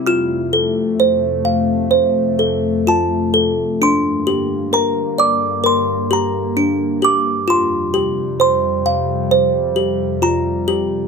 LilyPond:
<<
  \new Staff \with { instrumentName = "Music box" } { \time 4/4 \key f \major \tempo 4 = 65 << { f'''2. a''4 | c'''4 bes''8 d'''8 c'''8 bes''4 d'''8 | c'''4 c'''2 bes''4 | } \\ { f'8 a'8 c''8 f''8 c''8 a'8 f'8 a'8 | d'8 g'8 bes'8 d''8 bes'8 g'8 d'8 g'8 | f'8 g'8 c''8 f''8 c''8 g'8 f'8 g'8 | } >> }
  \new Staff \with { instrumentName = "Ambient pad" } { \clef bass \time 4/4 \key f \major <f, c a>1 | <g, d bes>1 | <f, c g>1 | }
>>